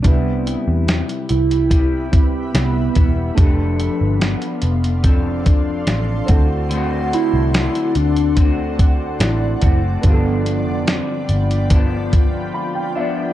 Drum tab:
HH |x-x-xxxxx-x-x-x-|x-x-xxxxx-x-x-x-|x-x-xxxxx-x-x-x-|x-x-x-xxx-x-----|
SD |----o-------o---|----o-------o---|----o-------o---|----o-----------|
BD |o-------o-o---o-|o-------o-o---o-|--------o-o---o-|o-------o-o-----|